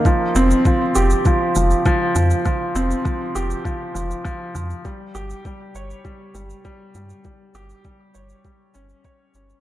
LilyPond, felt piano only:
\new Staff \with { instrumentName = "Felt piano" } { \clef bass \time 4/4 \key c \phrygian \tempo 4 = 100 f8 c'8 f8 g'8 f8 f8 f8 f8 | f8 c'8 f8 g'8 f8 f8 f8 f8 | g8 g'8 g8 des''8 g8 g8 g8 g8 | g8 g'8 g8 des''8 g8 des'8 des''8 des'8 | }